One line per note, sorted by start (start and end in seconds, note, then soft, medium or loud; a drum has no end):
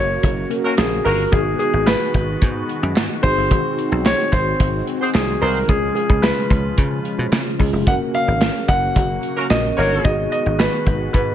0.00 0.16 F#1 medium
0.00 1.31 C#3 medium
0.00 1.30 F#3 medium
0.00 0.47 A#3 medium
0.00 1.31 A#3 medium
0.00 0.48 C#4 medium
0.00 0.48 F#4 medium
0.00 5.65 F#4 medium
0.00 0.48 A#4 medium
0.00 0.46 C#5 medium
0.23 0.44 F#1 medium
0.23 kick medium
0.23 closed hi-hat medium
0.50 1.32 A#3 soft
0.50 1.32 C#4 soft
0.50 1.32 F#4 soft
0.50 1.33 A#4 medium
0.50 closed hi-hat medium
0.64 0.73 A#3 medium
0.64 0.73 C#4 medium
0.64 0.73 F#4 medium
0.64 0.73 A#4 loud
0.78 0.99 A#1 medium
0.78 1.06 G#4 medium
0.78 snare loud
0.78 clap medium
0.78 closed hi-hat medium
1.04 1.26 G1 medium
1.04 1.23 A#3 loud
1.04 1.23 C#4 medium
1.04 1.23 F#4 loud
1.04 1.33 A#4 medium
1.04 1.23 A#4 loud
1.04 open hi-hat medium
1.31 1.53 G#1 medium
1.31 5.65 D#3 medium
1.31 7.83 G#3 medium
1.31 3.19 B3 medium
1.31 3.22 B3 medium
1.31 3.19 D#4 medium
1.31 3.20 F#4 medium
1.31 1.58 G#4 medium
1.31 3.20 G#4 medium
1.31 kick loud
1.31 closed hi-hat medium
1.59 1.87 G#4 medium
1.59 closed hi-hat medium
1.73 1.94 G#1 medium
1.86 2.92 B4 loud
1.86 snare loud
1.86 clap medium
1.86 closed hi-hat medium
2.14 2.35 G#1 medium
2.14 kick medium
2.14 closed hi-hat medium
2.42 2.62 G#2 loud
2.42 kick medium
2.42 closed hi-hat loud
2.69 closed hi-hat medium
2.83 2.93 F#2 medium
2.96 3.06 G#2 loud
2.96 snare loud
2.96 clap medium
2.96 closed hi-hat medium
3.22 3.34 G#1 medium
3.22 5.37 C4 medium
3.22 5.66 C4 medium
3.22 5.37 D#4 medium
3.22 5.38 F#4 medium
3.22 5.38 G#4 medium
3.22 4.07 C5 loud
3.22 kick medium
3.22 open hi-hat medium
3.37 3.47 G1 medium
3.51 3.61 G#1 loud
3.51 kick loud
3.51 closed hi-hat medium
3.78 closed hi-hat medium
3.92 4.12 B1 medium
4.05 4.31 C#5 loud
4.05 snare loud
4.05 clap medium
4.05 closed hi-hat medium
4.32 4.53 G#1 medium
4.32 4.83 C5 medium
4.32 kick medium
4.32 clap medium
4.32 closed hi-hat medium
4.60 4.80 G#1 medium
4.60 kick medium
4.60 closed hi-hat loud
4.87 closed hi-hat medium
5.01 5.10 C4 medium
5.01 5.10 F#4 medium
5.01 5.09 G#4 medium
5.01 5.10 C5 loud
5.14 5.35 C2 medium
5.14 5.43 G#4 medium
5.14 snare loud
5.14 clap medium
5.14 closed hi-hat loud
5.42 5.62 C2 medium
5.42 5.59 C4 medium
5.42 5.59 F#4 medium
5.42 5.59 G#4 loud
5.42 5.67 A#4 medium
5.42 5.59 C5 loud
5.42 open hi-hat medium
5.68 5.89 C#2 loud
5.68 10.01 C#3 medium
5.68 7.85 F3 medium
5.68 7.55 G#3 medium
5.68 7.56 C#4 medium
5.68 7.85 F4 medium
5.68 7.56 F4 medium
5.68 5.94 G#4 loud
5.68 7.56 G#4 medium
5.68 kick loud
5.68 closed hi-hat medium
5.95 6.24 G#4 medium
5.95 closed hi-hat medium
6.09 6.30 C#2 medium
6.09 kick medium
6.22 7.28 B4 medium
6.22 snare loud
6.22 clap medium
6.22 closed hi-hat medium
6.50 6.71 C#2 medium
6.50 kick medium
6.50 closed hi-hat medium
6.78 6.98 C#3 loud
6.78 kick medium
6.78 closed hi-hat medium
7.05 closed hi-hat medium
7.19 7.29 B2 medium
7.32 7.42 C#3 loud
7.32 snare loud
7.32 clap medium
7.32 closed hi-hat medium
7.59 7.70 C#2 medium
7.59 7.86 G#3 medium
7.59 7.85 C#4 medium
7.59 7.87 F4 soft
7.59 7.87 G#4 medium
7.59 kick medium
7.59 open hi-hat medium
7.73 7.83 F1 medium
7.86 7.97 F#1 medium
7.86 10.03 F#3 medium
7.86 9.47 A#3 medium
7.86 10.03 A#3 medium
7.86 9.47 C#4 medium
7.86 9.48 F#4 medium
7.86 11.35 F#4 medium
7.86 9.48 A#4 medium
7.86 7.94 F#5 loud
7.86 kick loud
7.86 closed hi-hat medium
8.14 8.71 F5 loud
8.14 closed hi-hat medium
8.28 8.48 G#1 medium
8.41 snare loud
8.41 clap medium
8.41 closed hi-hat medium
8.68 8.89 F#1 medium
8.68 9.46 F#5 loud
8.68 kick medium
8.68 clap medium
8.68 closed hi-hat medium
8.96 9.16 F#1 medium
8.96 kick medium
8.96 closed hi-hat medium
9.23 closed hi-hat medium
9.37 9.46 A#3 medium
9.37 9.46 C#4 medium
9.37 9.46 F#4 medium
9.37 9.46 A#4 loud
9.50 9.71 A#1 medium
9.50 10.05 A#3 soft
9.50 10.05 C#4 soft
9.50 10.04 F#4 soft
9.50 10.05 A#4 medium
9.50 9.78 D#5 medium
9.50 snare loud
9.50 clap medium
9.50 closed hi-hat medium
9.77 9.98 G1 medium
9.77 10.12 A#3 loud
9.77 10.13 D#4 medium
9.77 10.13 F#4 medium
9.77 10.12 A#4 loud
9.77 10.05 C#5 medium
9.77 open hi-hat medium
10.04 10.25 G#1 loud
10.04 11.35 D#3 medium
10.04 11.35 G#3 medium
10.04 11.35 B3 medium
10.04 11.35 D#4 medium
10.04 11.35 F#4 medium
10.04 11.35 G#4 medium
10.04 10.30 D#5 loud
10.04 kick loud
10.04 closed hi-hat medium
10.32 10.60 D#5 medium
10.32 closed hi-hat medium
10.46 10.66 G#1 medium
10.59 11.10 B4 medium
10.59 snare loud
10.59 clap medium
10.59 closed hi-hat medium
10.86 11.07 G#1 medium
10.86 kick medium
10.86 closed hi-hat medium
11.13 11.35 G#2 loud
11.13 11.35 B4 medium
11.13 kick medium
11.13 closed hi-hat loud